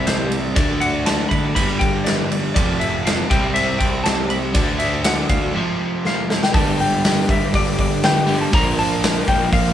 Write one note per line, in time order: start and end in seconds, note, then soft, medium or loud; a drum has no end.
0.00 0.57 C2 medium
0.00 0.55 C3 medium
0.00 0.56 G3 medium
0.00 0.56 C4 loud
0.07 0.32 C3 medium
0.07 0.31 G3 medium
0.07 0.32 C4 medium
0.07 0.32 E4 medium
0.07 0.32 G4 medium
0.07 0.42 C5 medium
0.07 snare loud
0.07 ride medium
0.32 0.44 G3 medium
0.32 0.45 C4 medium
0.32 ride medium
0.44 0.56 C4 soft
0.44 0.57 E4 soft
0.44 0.57 G4 medium
0.56 1.23 D2 medium
0.56 0.82 D3 medium
0.56 0.79 A3 medium
0.56 0.80 D4 medium
0.56 0.81 F#4 medium
0.56 0.81 A4 medium
0.56 0.82 D5 medium
0.56 kick loud
0.56 ride medium
0.80 0.94 A3 medium
0.80 0.93 F#4 medium
0.80 0.92 A4 medium
0.80 1.04 F#5 loud
0.80 ride medium
0.93 1.05 D4 soft
0.93 1.05 F#4 medium
0.93 1.06 A4 medium
1.05 1.31 D3 medium
1.05 1.28 A3 medium
1.05 1.29 D4 medium
1.05 1.30 F#4 medium
1.05 1.30 A4 medium
1.05 1.28 A5 medium
1.05 snare loud
1.05 ride loud
1.29 1.54 D3 medium
1.29 1.43 A3 medium
1.29 1.43 D4 medium
1.29 1.42 F#4 medium
1.29 1.41 A4 medium
1.29 1.54 B5 medium
1.29 kick medium
1.29 ride medium
1.42 1.55 D4 soft
1.42 1.55 F#4 soft
1.42 1.55 A4 medium
1.54 1.79 G1 medium
1.54 1.68 G2 medium
1.54 1.68 D3 medium
1.54 1.68 G3 medium
1.54 1.68 B3 medium
1.54 1.66 D4 medium
1.54 1.66 B4 medium
1.54 1.81 B5 loud
1.54 kick medium
1.54 ride loud
1.67 2.04 G3 soft
1.67 2.04 B3 soft
1.67 2.05 D4 soft
1.67 2.05 B4 medium
1.79 2.48 G1 medium
1.79 2.06 G5 medium
1.79 kick medium
1.79 ride medium
2.04 2.30 G2 medium
2.04 2.31 D3 medium
2.04 2.29 G3 medium
2.04 2.30 B3 medium
2.04 2.30 D4 loud
2.04 2.31 B4 medium
2.04 2.40 D5 loud
2.04 snare loud
2.04 ride medium
2.30 2.43 G3 medium
2.30 2.43 B3 medium
2.30 2.42 D4 medium
2.30 2.41 B4 medium
2.30 ride medium
2.43 2.55 G3 soft
2.43 2.56 B3 soft
2.43 2.56 D4 soft
2.43 2.56 B4 medium
2.54 3.22 F1 loud
2.54 3.29 F2 loud
2.54 3.28 C3 medium
2.54 2.79 F3 medium
2.54 2.79 C4 medium
2.54 2.80 F4 medium
2.54 2.81 A4 medium
2.54 2.81 D5 loud
2.54 kick loud
2.54 ride loud
2.80 2.93 F3 medium
2.80 2.93 C4 medium
2.80 2.92 F4 medium
2.80 2.91 A4 medium
2.80 3.05 E5 medium
2.80 ride medium
2.92 3.05 C4 soft
2.92 3.05 A4 medium
3.05 3.30 F3 medium
3.05 3.29 C4 medium
3.05 3.31 F4 medium
3.05 3.31 A4 medium
3.05 3.30 F5 medium
3.05 snare loud
3.05 ride medium
3.30 3.75 C2 medium
3.30 4.53 C3 loud
3.30 3.43 G3 medium
3.30 3.43 C4 medium
3.30 3.41 G4 medium
3.30 3.56 G5 medium
3.30 kick loud
3.30 ride medium
3.42 3.67 C4 soft
3.42 3.66 E4 medium
3.42 3.65 G4 medium
3.54 3.80 E5 loud
3.54 ride medium
3.66 4.04 C4 soft
3.66 4.05 E4 soft
3.66 4.04 G4 medium
3.79 4.55 C2 medium
3.79 4.05 G5 medium
3.79 kick medium
3.79 ride medium
4.04 4.30 C3 medium
4.04 4.29 G3 medium
4.04 4.30 C4 medium
4.04 4.30 E4 medium
4.04 4.31 G4 medium
4.04 4.30 A5 loud
4.04 snare loud
4.04 ride medium
4.30 4.43 G3 medium
4.30 4.43 C4 medium
4.30 4.42 E4 medium
4.30 4.41 G4 medium
4.30 4.37 B5 medium
4.30 ride medium
4.42 4.55 C4 soft
4.42 4.55 E4 medium
4.42 4.55 G4 medium
4.54 5.22 D2 medium
4.54 4.80 D3 medium
4.54 4.78 A3 medium
4.54 4.79 D4 medium
4.54 4.80 F#4 medium
4.54 4.80 A4 medium
4.54 4.80 D5 loud
4.54 kick loud
4.54 ride medium
4.79 4.92 A3 medium
4.79 4.93 D4 medium
4.79 4.92 F#4 medium
4.79 4.91 A4 medium
4.79 5.04 E5 medium
4.79 ride medium
4.92 5.04 D4 soft
4.92 5.04 F#4 medium
4.92 5.05 A4 medium
5.04 5.30 D3 medium
5.04 5.27 A3 medium
5.04 5.28 D4 medium
5.04 5.28 F#4 medium
5.04 5.29 A4 medium
5.04 5.29 F#5 medium
5.04 snare loud
5.04 ride loud
5.28 5.52 D2 medium
5.28 5.42 A3 medium
5.28 5.42 D4 medium
5.28 5.41 F#4 medium
5.28 5.39 A4 medium
5.28 6.05 F5 medium
5.28 kick medium
5.28 ride medium
5.41 5.55 D4 soft
5.41 5.55 F#4 medium
5.41 5.54 A4 medium
5.54 6.52 F2 loud
5.54 6.53 C3 loud
5.54 5.67 F3 medium
5.54 5.67 A3 medium
5.54 5.67 C4 medium
5.54 5.66 F4 medium
5.54 5.65 A4 medium
5.66 6.04 C4 soft
5.66 6.04 F4 medium
5.66 6.04 A4 medium
6.04 6.29 F3 medium
6.04 6.27 A3 loud
6.04 6.28 C4 medium
6.04 6.28 F4 loud
6.04 6.29 A4 loud
6.04 6.44 F5 medium
6.04 snare medium
6.28 6.41 A3 medium
6.28 6.42 C4 medium
6.28 6.41 F4 medium
6.28 6.40 A4 medium
6.28 snare loud
6.41 6.55 C4 soft
6.41 6.55 F4 medium
6.41 6.54 A4 medium
6.41 6.54 G5 medium
6.41 snare loud
6.53 7.21 G1 medium
6.53 6.79 G2 medium
6.53 6.79 D3 medium
6.53 6.78 G3 medium
6.53 6.79 B3 medium
6.53 6.80 D4 medium
6.53 8.51 G4 medium
6.53 8.51 B4 medium
6.53 6.80 B4 medium
6.53 8.51 D5 medium
6.53 6.78 A5 loud
6.53 kick loud
6.53 open hi-hat medium
6.79 7.03 G3 medium
6.79 7.04 B3 medium
6.79 7.04 D4 medium
6.79 7.31 G5 medium
6.79 open hi-hat medium
7.04 7.16 G2 medium
7.04 7.17 D3 medium
7.04 7.16 G3 medium
7.04 7.16 B3 medium
7.04 7.15 D4 medium
7.04 7.14 B4 medium
7.04 snare loud
7.04 open hi-hat medium
7.15 7.27 G3 soft
7.15 7.28 B3 medium
7.15 7.28 B4 medium
7.28 7.51 G1 medium
7.28 8.01 G2 medium
7.28 8.02 D3 medium
7.28 7.66 G3 medium
7.28 7.65 B3 medium
7.28 7.65 D4 medium
7.28 7.64 B4 medium
7.28 7.55 E5 medium
7.28 kick medium
7.28 open hi-hat medium
7.54 7.76 G1 loud
7.54 7.79 D5 loud
7.54 kick medium
7.54 open hi-hat medium
7.65 7.76 G3 soft
7.65 7.77 B3 soft
7.65 7.77 D4 soft
7.65 7.78 B4 medium
7.77 8.45 G1 medium
7.77 8.01 G3 medium
7.77 8.02 B3 medium
7.77 8.02 D4 medium
7.77 8.02 B4 medium
7.77 8.03 D5 medium
7.77 kick medium
7.77 open hi-hat medium
8.02 8.28 G2 medium
8.02 8.28 D3 medium
8.02 8.25 G3 loud
8.02 8.26 B3 medium
8.02 8.26 D4 medium
8.02 8.27 B4 loud
8.02 8.39 G5 medium
8.02 snare loud
8.02 open hi-hat medium
8.26 8.52 D3 medium
8.26 8.40 G3 medium
8.26 8.40 B3 medium
8.26 8.39 D4 medium
8.26 8.38 B4 medium
8.26 open hi-hat medium
8.31 8.53 G2 medium
8.39 8.53 G3 soft
8.39 8.53 B3 soft
8.39 8.52 D4 medium
8.39 8.53 B4 medium
8.39 8.54 A5 medium
8.52 9.20 A#1 loud
8.52 8.78 A#2 medium
8.52 8.78 D3 medium
8.52 8.77 F3 medium
8.52 8.77 A#3 medium
8.52 8.78 D4 medium
8.52 9.73 F4 medium
8.52 8.78 A#4 medium
8.52 9.73 A#4 medium
8.52 9.73 D5 medium
8.52 8.78 A#5 medium
8.52 kick loud
8.52 open hi-hat medium
8.78 9.02 F3 medium
8.78 9.03 A#3 medium
8.78 9.03 D4 medium
8.78 9.03 A#4 medium
8.78 9.28 A5 loud
8.78 open hi-hat medium
9.03 9.15 A#2 medium
9.03 9.16 D3 medium
9.03 9.16 F3 medium
9.03 9.16 A#3 medium
9.03 9.15 D4 medium
9.03 9.14 A#4 medium
9.03 snare loud
9.03 open hi-hat loud
9.15 9.26 F3 soft
9.15 9.27 A#3 medium
9.15 9.28 D4 medium
9.15 9.28 A#4 medium
9.27 9.50 A#1 medium
9.27 9.73 A#2 medium
9.27 9.65 F3 medium
9.27 9.64 A#3 medium
9.27 9.64 D4 medium
9.27 9.63 A#4 medium
9.27 9.53 G5 medium
9.27 kick medium
9.27 open hi-hat medium
9.52 9.73 A#1 medium
9.52 9.73 F5 loud
9.52 kick loud
9.52 open hi-hat loud
9.65 9.73 F3 soft
9.65 9.73 A#3 soft
9.65 9.73 D4 medium
9.65 9.73 A#4 medium